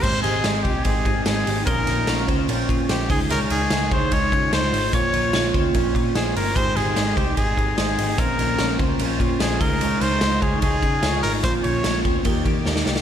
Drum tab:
CC |x---------------|----------------|----------------|----------------|
RD |--x-x-x-x-x-x-x-|x-x-x-x-x-x-x-x-|x-x-x-x-x-x-x-x-|x-x-x-x-x-x-x-x-|
HH |--------------o-|p-------------o-|p-------------o-|p-------------o-|
SD |--o-o-------o---|--o-o-------o---|----o-------o---|----o-------o---|
BD |o-----o-o-o-----|o-----o---o---o-|------o-o-o-----|o-----o-o-o-----|

CC |----------------|----------------|----------------|----------------|
RD |x-x-x-x-x-x-x-x-|x-x-x-x-x-x-x-x-|x-x-x-x-x-x-x-x-|x-x-x-x-x-x-----|
HH |p-------------o-|p-------------o-|p-------------o-|p---------------|
SD |--o-o-------o---|--o-o-------o---|--o-o-------o---|----o-------oooo|
BD |o-----o-o-o-----|o-----o---o---o-|------o-o-o-----|o-----o-o-o-----|